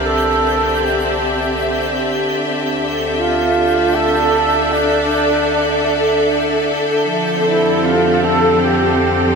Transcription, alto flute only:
X:1
M:3/4
L:1/8
Q:1/4=77
K:Dm
V:1 name="Alto flute"
A2 G3 z | z2 F2 A2 | D4 z2 | z E F A G2 |]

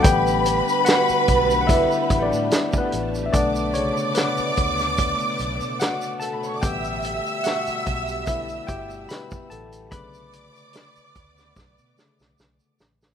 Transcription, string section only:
X:1
M:4/4
L:1/16
Q:"Swing 16ths" 1/4=73
K:Amix
V:1 name="String section"
[Bb]12- [Bb]2 z2 | [dd']12- [dd']3/2 z/2 [Aa]/2 [Bb]/2 [cc']/2 [dd']/2 | [ee']12- [ee']2 z2 | [dd']12- [dd']2 z2 |]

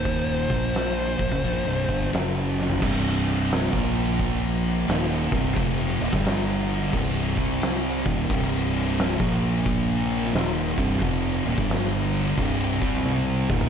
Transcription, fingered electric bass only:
X:1
M:4/4
L:1/16
Q:"Swing" 1/4=88
K:Cm
V:1 name="Fingered electric bass" clef=bass
E,,,2 B,,,4 B,,, ^F,,, B,,, C,,, G,,,2 F,,,4 | C,,,4- C,,, B,,,6- B,,, E,,,2 C,,,2 | F,,,2 E,,, G,,,4- G,,, C,,,2 C,,4 E,,,2 | C,,,4- C,,, B,,,6- B,,, E,,,2 C,,,2 |
F,,,2 E,,, G,,,4- G,,, C,,,2 C,,4 E,,,2 |]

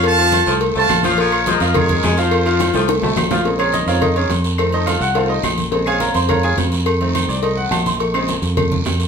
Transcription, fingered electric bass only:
X:1
M:4/4
L:1/8
Q:1/4=211
K:Bbm
V:1 name="Fingered electric bass" clef=bass
F,,3 C,,2 C,, B,,,2- | B,,,3 F,,3 F,,2- | F,,3 C,,2 C,, B,,,2- | B,,,3 F,,3 F,,2- |
F,,3 C,,3 B,,,2- | B,,,3 F,,3 F,,2- | F,,3 C,,3 B,,,2- | B,,,3 F,,3 F,,2 |]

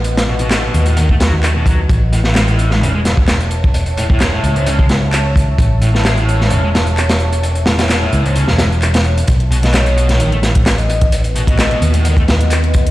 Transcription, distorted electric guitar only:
X:1
M:4/4
L:1/16
Q:1/4=130
K:Alyd
V:1 name="Distorted electric guitar" clef=bass
z2 B,, B,, A, B,,2 A,, D, A, F, z A, B,, F, z | z2 A,, A,, G, A,,2 G,, C, G, G,, z4 z | z2 A,, A,, G, A,,2 G,, C, G, G,, z4 z | z2 A,, A,, G, A,,2 G,, C, G, G,, z4 z |
z2 A,, A,, G, A,,2 G,, C, G, G,, z4 z | z2 B,, B,, A, B,,2 A,, D, A, A,, z4 z | z2 B,, B,, A, B,,2 A,, D, A, A,, z4 z |]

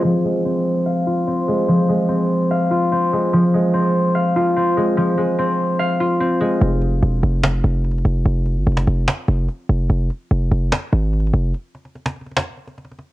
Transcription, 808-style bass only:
X:1
M:4/4
L:1/16
Q:1/4=146
K:Fm
V:1 name="808-style bass" clef=bass
z16 | z16 | z16 | z16 |
F,,,4 =E,,,2 F,,,4 F,,,4 F,,,2 | F,,,3 G,,, F,,,2 F,,,2 z2 F,,,2 z2 F,,,2 | F,,,2 z2 F,,,2 F,,,2 z2 A,,,4 F,,,2 | z16 |]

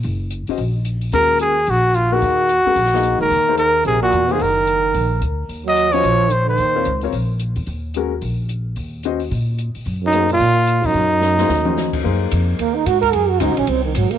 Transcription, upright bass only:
X:1
M:4/4
L:1/8
Q:"Swing" 1/4=220
K:Ebdor
V:1 name="Upright bass" clef=bass
G,,,3 z B,,,4 | E,,4 B,,,4 | E,,3 z B,,,3 D,, | E,,4 B,,,2 _F,,2 |
G,,,4 B,,,2 =D,,2 | E,,4 B,,,4 | E,,2 D,,2 B,,,3 _F,, | E,,4 B,,,4 |
E,,4 B,,3 z | G,,4 B,,3 _F,, | G,,4 E,,4 | G,,2 F,,2 E,,2 A,,2 |
G,,2 (3D,, C,, B,,, C,,2 A,,, z |]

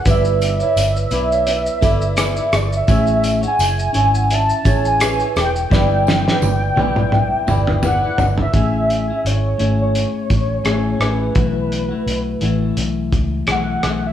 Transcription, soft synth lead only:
X:1
M:4/4
L:1/16
Q:"Swing 16ths" 1/4=85
K:A
V:1 name="Soft synth lead"
e12- e2 d e- | e3 g4- g a3 g3 =g2- | =g12 f3 e- | e4 c3 c6- c B2- |
B8- B2 z2 f3 e |]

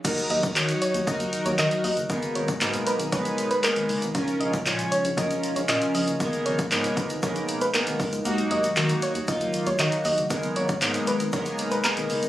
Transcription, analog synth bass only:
X:1
M:4/4
L:1/16
Q:1/4=117
K:G#dor
V:1 name="Analog synth bass" clef=bass
D,,2 D,,2 D,2 z D,, z D,, z D,, D, z D,, F,,, | G,,,2 G,,,2 G,,2 z G,,, A,,,2 z3 G,,, F,,, G,,, | A,,,2 A,,,2 A,,2 z A,,, z A,,, z A,,, A,, z A,,, F,,, | G,,,2 G,,,2 G,,2 z G,,, A,,,2 z3 G,,, B,,, C,, |
D,,2 D,,2 D,2 z D,, z D,, z D,, D, z D,, F,,, | G,,,2 G,,,2 G,,2 z G,,, A,,,2 z3 G,,, F,,, G,,, |]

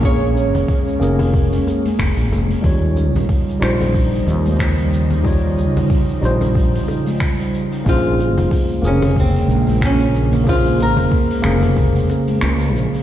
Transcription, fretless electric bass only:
X:1
M:4/4
L:1/16
Q:"Swing 16ths" 1/4=92
K:Bbdor
V:1 name="Fretless electric bass" clef=bass
B,,,3 F,,, z2 F,,,3 z3 F,,, B,,, F,,, z | E,,3 B,,, z2 B,,,3 z E,,6- | E,,3 B,,, z2 B,,,3 z6 z | B,,,3 F,,, z2 F,,,3 z B,,,6- |
B,,,3 F,,, z2 F,,,3 z3 D,,2 B,,, z |]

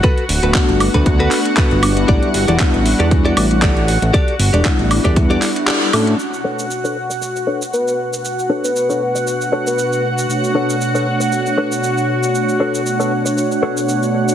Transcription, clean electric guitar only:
X:1
M:4/4
L:1/16
Q:"Swing 16ths" 1/4=117
K:Bm
V:1 name="Clean electric guitar"
[FAB]2 z [FAB] z3 [FAB] z [FAB] z2 [FAB]2 z2 | [GAd]2 z [GAd] z3 [GAd] z [GAd] z2 [GAd]2 z2 | [GAd]2 z [GAd] z3 [GAd] z [GAd] z2 [GAd]2 z2 | z2 [DABc]2 z [DABc] z4 [DABc] z4 z |
z2 [DABc]2 z [DABc] z4 [DABc] z4 z | z2 [DABc]2 z [DABc] z4 [DABc] z4 z | z2 [DABc]2 z [DABc] z4 [DABc] z4 z |]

